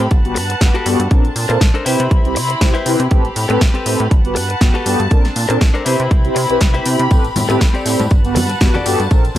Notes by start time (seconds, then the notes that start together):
Already playing: C4 G4 B5
0.11 G1 B4 F#5 A5, kick, closed hi-hat
0.24 B3 F#4 G4 B4, closed hi-hat
0.35 G2, muted clean electric guitar stroke, open hi-hat
0.50 muted clean electric guitar stroke, closed hi-hat
0.61 G1 B3 F#4 G4 B4, kick, snare, closed hi-hat
0.74 F#4 G4 A4 B4, closed hi-hat
0.86 G2 B3 F#4 G4 A4, open hi-hat
0.99 G2, muted clean electric guitar stroke, closed hi-hat
1.11 A#1 C4 D4 A4 A#4 A5, kick, closed hi-hat
1.25 closed hi-hat
1.36 A#2, open hi-hat
1.49 A#2 C4 D4 A4 A#4, muted clean electric guitar stroke, closed hi-hat
1.60 A#1, muted clean electric guitar stroke, kick, snare, closed hi-hat
1.74 D4 A4 A#4 C5, closed hi-hat
1.85 C3 C4 E4 G4 B4 C5 B5, open hi-hat
2.00 C3, closed hi-hat
2.11 C2, kick, closed hi-hat
2.25 C4 E4 G4 C5, closed hi-hat
2.35 C3, muted clean electric guitar stroke, open hi-hat
2.49 muted clean electric guitar stroke, closed hi-hat
2.61 C2 C4 E4 G4 C5, kick, snare, closed hi-hat
2.74 E4 G4 B4 C5, closed hi-hat
2.86 C3 C4 E4 G4 B4, open hi-hat
2.99 C3, muted clean electric guitar stroke, closed hi-hat
3.11 A1 C4 G4 A4 B4 B5, kick, closed hi-hat
3.25 closed hi-hat
3.36 A2, open hi-hat
3.49 A2 C4 G4 A4 B4, muted clean electric guitar stroke, closed hi-hat
3.60 A1, muted clean electric guitar stroke, kick, snare, closed hi-hat
3.74 C4 G4 A4 B4, closed hi-hat
3.86 A2 C4 G4 A4 C5, open hi-hat
4.00 A2, closed hi-hat
4.11 G1 B4 F#5 A5, kick, closed hi-hat
4.24 B3 F#4 G4 B4, closed hi-hat
4.35 G2, muted clean electric guitar stroke, open hi-hat
4.49 muted clean electric guitar stroke, closed hi-hat
4.61 G1 B3 F#4 G4 B4, kick, snare, closed hi-hat
4.74 F#4 G4 A4 B4, closed hi-hat
4.86 G2 B3 F#4 G4 A4, open hi-hat
4.99 G2, muted clean electric guitar stroke, closed hi-hat
5.11 A#1 C4 D4 A4 A#4, kick, closed hi-hat
5.25 snare, closed hi-hat
5.36 A#2, open hi-hat
5.49 A#2 C4 D4 A4 A#4, muted clean electric guitar stroke, closed hi-hat
5.60 A#1, muted clean electric guitar stroke, kick, snare, closed hi-hat
5.74 D4 A4 A#4 C5, closed hi-hat
5.85 C3 C4 E4 G4 B4 C5 B5, open hi-hat
6.00 C3, closed hi-hat
6.11 C2, kick, closed hi-hat
6.24 C4 E4 G4 C5, closed hi-hat
6.35 C3, muted clean electric guitar stroke, open hi-hat
6.49 C2 C4 E4 G4 B4, muted clean electric guitar stroke, closed hi-hat
6.61 C2, kick, snare, closed hi-hat
6.74 C4 E4 G4 B4 C5 B5, closed hi-hat
6.86 C3, open hi-hat
6.99 C3, muted clean electric guitar stroke, closed hi-hat
7.11 A1 C4 G4 A4 B4, kick, closed hi-hat, tambourine
7.25 closed hi-hat, tambourine
7.36 A2, open hi-hat, tambourine, high conga, low conga
7.49 A2 C4 G4 A4 B4, muted clean electric guitar stroke, closed hi-hat, tambourine
7.60 A1, muted clean electric guitar stroke, kick, snare, closed hi-hat, tambourine
7.74 C4 G4 A4 D5, closed hi-hat, tambourine
7.86 A2 C4 G4 A4 C5, open hi-hat, tambourine
8.00 A2, closed hi-hat, tambourine, high conga
8.11 G1 B4 F#5 A5, kick, closed hi-hat, tambourine
8.24 B3 F#4 G4 B4, closed hi-hat, tambourine
8.35 G2, muted clean electric guitar stroke, open hi-hat, tambourine, high conga, low conga
8.49 muted clean electric guitar stroke, closed hi-hat, tambourine
8.60 G1 B3 F#4 G4 B4, kick, snare, closed hi-hat, tambourine
8.74 F#4 G4 A4 D5, closed hi-hat, tambourine, low conga
8.86 G2 B3 F#4 G4 A4, open hi-hat, tambourine
8.99 G2, muted clean electric guitar stroke, closed hi-hat, tambourine
9.11 A#1 C4 D4 A4 A#4, kick, closed hi-hat, tambourine
9.24 closed hi-hat, tambourine
9.35 low conga